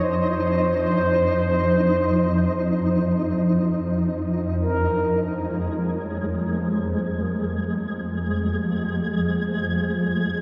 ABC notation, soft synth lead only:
X:1
M:4/4
L:1/8
Q:1/4=46
K:Fm
V:1 name="Soft synth lead"
c6 z B | c d c B A G A2 |]